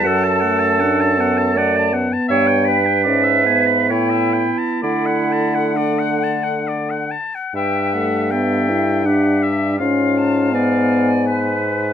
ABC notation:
X:1
M:3/4
L:1/16
Q:1/4=79
K:Edor
V:1 name="Flute"
a12 | g4 e4 g2 z2 | f8- f2 z2 | g2 f2 e4 e4 |
^e2 a2 ^g8 |]
V:2 name="Oboe"
f a f a f a f a f a f a | e g b g d e ^g b c e =g a | d f a f d f a f d f a f | e4 g4 f2 e2 |
^e8 B4 |]
V:3 name="Clarinet"
A8 d2 z2 | c2 B6 E4 | E4 D4 z4 | B4 A4 G4 |
^E4 d4 B4 |]
V:4 name="French horn"
F,2 A,2 D2 B,2 A,2 B,2- | B,2 z2 C2 B,6 | A,8- A,2 z2 | z2 A,2 B,2 E2 D4 |
C4 B,6 z2 |]
V:5 name="Bassoon" clef=bass
F,,12 | G,,4 ^G,,4 A,,2 z2 | D,8- D,2 z2 | G,,12 |
^G,,12 |]